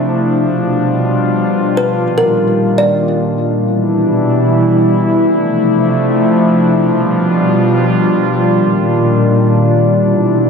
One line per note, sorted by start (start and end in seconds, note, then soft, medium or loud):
0.00 0.36 C3 medium
0.00 1.94 F3 medium
0.00 0.36 A3 medium
0.00 3.54 D4 medium
0.00 0.34 E4 medium
0.37 1.96 B2 medium
0.37 3.54 G3 medium
0.37 3.54 F4 medium
1.77 1.96 B4 medium
1.97 3.56 A#2 medium
1.97 3.56 D#3 medium
2.18 2.74 A#4 medium
2.78 3.54 D5 medium
3.57 5.16 B2 medium
3.57 5.16 E3 medium
3.57 5.16 G3 medium
3.57 5.16 D4 medium
3.57 6.74 E4 medium
5.18 6.76 C3 medium
5.18 8.34 F3 medium
5.18 6.76 A3 medium
5.18 10.50 D4 medium
6.78 8.36 B2 medium
6.78 10.50 G3 medium
6.78 9.94 F4 medium
8.38 9.96 A#2 medium
8.38 9.96 D#3 medium
9.97 10.50 B2 medium
9.97 10.50 E3 medium
9.97 10.50 E4 medium